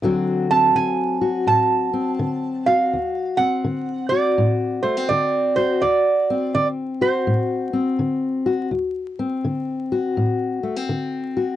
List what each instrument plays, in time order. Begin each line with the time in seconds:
0.02 steel-string acoustic guitar D2 D3 F#3 C4 F#4
0.51 steel-string acoustic guitar C4, resonator guitar played with a steel bar A5
0.75 steel-string acoustic guitar D3, resonator guitar played with a steel bar G#5
1.21 steel-string acoustic guitar F#4
1.47 steel-string acoustic guitar A2, resonator guitar played with a steel bar A5
1.93 steel-string acoustic guitar C4
2.19 steel-string acoustic guitar D3
2.66 steel-string acoustic guitar F#4, resonator guitar played with a steel bar F5
2.93 steel-string acoustic guitar D2
3.37 steel-string acoustic guitar C4, resonator guitar played with a steel bar F#5
3.64 steel-string acoustic guitar D3
4.09 steel-string acoustic guitar F#4, resonator guitar played with a steel bar D5
4.38 steel-string acoustic guitar A2
4.83 steel-string acoustic guitar A3, resonator guitar played with a steel bar C5
4.97 steel-string acoustic guitar C4
5.09 steel-string acoustic guitar D3, resonator guitar played with a steel bar D5
5.56 steel-string acoustic guitar F#4, resonator guitar played with a steel bar C5
5.82 steel-string acoustic guitar D2, resonator guitar played with a steel bar D5
6.30 steel-string acoustic guitar C4
6.54 steel-string acoustic guitar D3, resonator guitar played with a steel bar D5
7.01 steel-string acoustic guitar F#4, resonator guitar played with a steel bar C5
7.27 steel-string acoustic guitar A2
7.73 steel-string acoustic guitar C4
7.99 steel-string acoustic guitar D3
8.46 steel-string acoustic guitar F#4
8.71 steel-string acoustic guitar D2
9.19 steel-string acoustic guitar C4
9.44 steel-string acoustic guitar D3
9.92 steel-string acoustic guitar F#4
10.17 steel-string acoustic guitar A2
10.63 steel-string acoustic guitar A3
10.76 steel-string acoustic guitar C4
10.89 steel-string acoustic guitar D3
11.37 steel-string acoustic guitar F#4